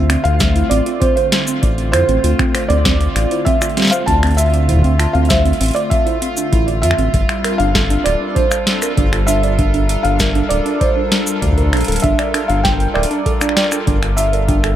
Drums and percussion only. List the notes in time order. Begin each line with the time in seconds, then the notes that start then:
0.10 finger snap, closed hi-hat
0.25 closed hi-hat
0.40 kick, snare, closed hi-hat, shaker
0.56 closed hi-hat
0.71 closed hi-hat
0.86 closed hi-hat
1.02 kick, closed hi-hat
1.17 closed hi-hat
1.32 snare, closed hi-hat
1.48 closed hi-hat, shaker
1.63 kick, closed hi-hat
1.78 closed hi-hat
1.93 finger snap, closed hi-hat
2.09 closed hi-hat
2.24 closed hi-hat
2.39 finger snap, kick, closed hi-hat
2.55 finger snap, closed hi-hat
2.70 closed hi-hat
2.85 kick, snare, closed hi-hat
3.01 closed hi-hat
3.16 finger snap, closed hi-hat
3.31 closed hi-hat
3.46 kick, closed hi-hat
3.62 finger snap, closed hi-hat, shaker
3.69 closed hi-hat
3.77 snare, closed hi-hat
3.80 snare
3.82 snare
3.85 snare, closed hi-hat
3.87 snare
3.90 snare, closed hi-hat, shaker
4.08 kick, closed hi-hat
4.23 finger snap, closed hi-hat
4.27 closed hi-hat
4.31 closed hi-hat
4.34 closed hi-hat
4.38 closed hi-hat, shaker
4.50 closed hi-hat
4.54 closed hi-hat
4.69 kick, closed hi-hat
4.71 kick
4.74 kick
4.77 kick
4.79 kick
4.82 kick, closed hi-hat
5.00 finger snap, closed hi-hat
5.15 closed hi-hat
5.25 closed hi-hat
5.30 kick, snare, closed hi-hat, shaker
5.35 closed hi-hat
5.45 closed hi-hat
5.53 closed hi-hat
5.61 closed hi-hat
5.63 closed hi-hat
5.66 closed hi-hat
5.68 closed hi-hat
5.71 closed hi-hat
5.74 closed hi-hat
5.76 closed hi-hat
5.91 kick, closed hi-hat
6.07 closed hi-hat
6.22 closed hi-hat
6.37 closed hi-hat, shaker
6.53 kick, closed hi-hat
6.68 closed hi-hat
6.83 closed hi-hat
6.91 finger snap
6.99 closed hi-hat
7.14 kick, closed hi-hat
7.29 finger snap, closed hi-hat
7.44 finger snap, closed hi-hat
7.60 closed hi-hat
7.75 kick, snare
7.90 closed hi-hat
8.06 finger snap, closed hi-hat
8.36 kick, closed hi-hat
8.52 finger snap, closed hi-hat, shaker
8.67 snare, closed hi-hat
8.82 finger snap, closed hi-hat, shaker
8.97 kick, closed hi-hat
9.13 finger snap, closed hi-hat
9.28 closed hi-hat, shaker
9.43 closed hi-hat
9.59 kick, closed hi-hat
9.74 closed hi-hat
9.89 closed hi-hat
10.05 closed hi-hat
10.20 kick, snare, closed hi-hat, shaker
10.35 closed hi-hat
10.51 closed hi-hat
10.66 closed hi-hat
10.81 kick, closed hi-hat
11.12 snare, closed hi-hat
11.27 closed hi-hat, shaker
11.42 kick, closed hi-hat
11.53 kick
11.58 closed hi-hat
11.63 kick
11.73 finger snap, closed hi-hat
11.77 closed hi-hat
11.81 closed hi-hat
11.84 closed hi-hat
11.88 closed hi-hat
11.92 closed hi-hat
11.96 closed hi-hat
12.00 closed hi-hat
12.04 kick, closed hi-hat
12.19 finger snap, closed hi-hat
12.34 finger snap, closed hi-hat
12.50 closed hi-hat
12.65 kick, snare, closed hi-hat
12.80 closed hi-hat
12.95 finger snap
13.03 closed hi-hat
13.11 closed hi-hat
13.26 kick, closed hi-hat
13.41 finger snap, closed hi-hat, shaker
13.49 finger snap
13.57 finger snap, snare, closed hi-hat
13.64 finger snap
13.72 finger snap, closed hi-hat, shaker
13.87 kick, closed hi-hat
14.03 finger snap, closed hi-hat
14.18 closed hi-hat, shaker
14.33 closed hi-hat
14.49 kick, closed hi-hat
14.64 finger snap, closed hi-hat